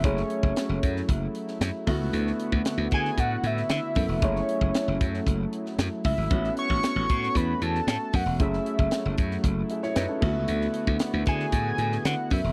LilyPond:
<<
  \new Staff \with { instrumentName = "Analog synth lead" } { \time 4/4 \key fis \dorian \tempo 4 = 115 cis''2 r2 | r4. gis''8 fis''8 e''8 e''4 | cis''2 r4. e''8~ | e''8 cis'''4. b''8 a''4 fis''8 |
e''4. r2 r8 | r4. gis''4. fis''8 e''8 | }
  \new Staff \with { instrumentName = "Grand piano" } { \time 4/4 \key fis \dorian << { r1 | r1 | r1 | r1 |
r2 r8 <gis' e''>16 <e' cis''>16 <dis' b'>16 <cis' a'>8 r16 | r1 | } \\ { <a cis' e' gis'>2.~ <a cis' e' gis'>8 <a b e' fis'>8~ | <a b e' fis'>2.~ <a b e' fis'>8 <a b e' a'>8 | <a cis' e' gis'>1 | <b cis' e' fis'>1 |
<a cis' e' gis'>2.~ <a cis' e' gis'>8 <a b e' fis'>8~ | <a b e' fis'>2.~ <a b e' fis'>8 r8 | } >> }
  \new Staff \with { instrumentName = "Analog synth pad" } { \time 4/4 \key fis \dorian << { e'1~ | e'1~ | e'1 | cis'1 |
e'1~ | e'1 | } \\ { <fis a>2.~ <fis a>8 <d b fis'>8~ | <d b fis'>1 | <fis a>1 | <a fis'>1 |
<fis a>2.~ <fis a>8 <d b fis'>8~ | <d b fis'>1 | } >> }
  \new Staff \with { instrumentName = "Slap bass" } { \clef bass \time 4/4 \key fis \dorian fis,,8 r16 fis,,16 r16 fis,,16 fis,8 fis,,8 r8 fis,16 r16 d,16 cis,16 | d,8 r16 d,16 r16 d,16 d8 a,8 a,8 d16 r16 fis,16 e,,16 | fis,,8 r16 fis,,16 r16 fis,,16 fis,8 fis,,8 r8 fis,16 r16 cis,16 gis,,16 | a,,8 r16 a,,16 r16 a,,16 a,8 e,8 e,8 a,16 r16 fis,16 e,,16 |
fis,,8 r16 fis,,16 r16 fis,,16 fis,8 fis,,8 r8 fis,16 r16 d,16 cis,16 | d,8 r16 d,16 r16 d,16 d8 a,8 a,8 d16 r16 fis,16 e,,16 | }
  \new DrumStaff \with { instrumentName = "Drums" } \drummode { \time 4/4 <hh bd>16 sn16 hh16 bd16 <hh sn>8 <hh bd>16 sn16 <hh bd>8 hh16 sn16 <hh sn>8 <hho bd>8 | hh16 sn16 hh16 bd16 <hh sn>8 <hh bd>16 sn16 <hh bd>8 hh16 sn16 <hh sn>8 <hho bd>8 | <hh bd>16 sn16 hh16 bd16 <hh sn>8 <hh bd>16 sn16 <hh bd>8 hh16 sn16 <hh sn>8 <hho bd>8 | <hh bd>16 sn16 hh16 bd16 <hh sn>8 <hh bd>16 sn16 <hh bd>8 hh16 sn16 <hh sn>8 <hho bd>8 |
<hh bd>16 sn16 hh16 bd16 <hh sn>8 <hh bd>16 sn16 <hh bd>8 hh16 sn16 <hh sn>8 <cymc bd>8 | hh16 sn16 hh16 bd16 <hh sn>8 <hh bd>16 sn16 <hh bd>8 hh16 sn16 <hh sn>8 <hho bd>8 | }
>>